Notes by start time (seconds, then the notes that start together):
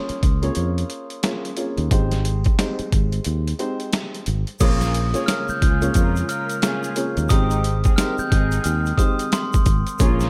Already playing: A#3 C#4 F4 G#4 C#5
0.09 muted fingered electric bass stroke, closed hi-hat
0.23 C#2, kick, closed hi-hat
0.42 A#3 C#4 F4 G#4 C#5, closed hi-hat
0.55 F2, closed hi-hat
0.78 closed hi-hat
0.90 closed hi-hat
1.10 closed hi-hat
1.23 A#3 C#4 F4 G#4 C#5, snare, closed hi-hat
1.45 closed hi-hat
1.57 A#3 C#4 F4 G#4 C#5, closed hi-hat
1.78 D#2, closed hi-hat
1.91 G#1 G#3 C4 D#4 G4 C5, kick, closed hi-hat
2.11 snare, closed hi-hat
2.25 closed hi-hat
2.44 kick, closed hi-hat
2.59 G#3 C4 D#4 G4 C5, snare, closed hi-hat
2.79 muted fingered electric bass stroke, closed hi-hat
2.92 G#1, kick, closed hi-hat
3.12 closed hi-hat
3.24 D#2, closed hi-hat
3.48 closed hi-hat
3.59 G#3 C4 D#4 G4 C5, closed hi-hat
3.80 closed hi-hat
3.93 snare, closed hi-hat
4.14 closed hi-hat
4.26 G#1, closed hi-hat
4.47 closed hi-hat
4.60 A#1 C#3 G#3 A#3 C#4 F4 G#4 C#5 D#6, kick, closed hi-hat, crash, shaker
4.81 snare, closed hi-hat, shaker
4.94 closed hi-hat
5.14 A#3 C#4 F4 G#4 C#5, closed hi-hat, shaker
5.26 C#4 F4 A#4 F6, snare, closed hi-hat, shaker
5.49 G6, muted fingered electric bass stroke, shaker
5.62 C#2 C#4 F4 G#4 G6, kick, closed hi-hat
5.82 A#3 C#4 F4 G#4 C#5, closed hi-hat, shaker
5.94 F2 C#4 F4 A#4, kick, closed hi-hat, shaker
6.16 closed hi-hat, shaker
6.29 C#4 F4 A#4 F6, closed hi-hat, shaker
6.50 closed hi-hat, shaker
6.62 A#3 C#4 F4 G#4 C#5, snare, closed hi-hat, shaker
6.84 closed hi-hat, shaker
6.96 A#3 C#4 F4 G#4 C#5, closed hi-hat, shaker
7.17 D#2, closed hi-hat, shaker
7.29 G#1 D#3 G#3 C4 D#4 G4 C5 G5 D#6, kick, closed hi-hat, shaker
7.51 closed hi-hat, shaker
7.64 closed hi-hat
7.84 C4 D#4 G#4, kick, closed hi-hat, shaker
7.96 G#3 C4 D#4 G4 A#4 C5 F6, snare, closed hi-hat, shaker
8.18 G6, muted fingered electric bass stroke, shaker
8.30 G#1 C4 D#4 G#4 G6, kick, closed hi-hat
8.52 closed hi-hat, shaker
8.64 D#2 F6, closed hi-hat, shaker
8.86 closed hi-hat, shaker
8.97 G#3 C4 D#4 G4 C5 D#6, kick, closed hi-hat, shaker
9.19 closed hi-hat, shaker
9.32 C6, snare, closed hi-hat, shaker
9.54 kick, closed hi-hat, shaker
9.66 G#1, kick, closed hi-hat, shaker
9.87 closed hi-hat, shaker
9.99 A#1 C#3 A#3 C#4 F4 G#4 C#5, kick, closed hi-hat, shaker
10.20 snare, closed hi-hat, shaker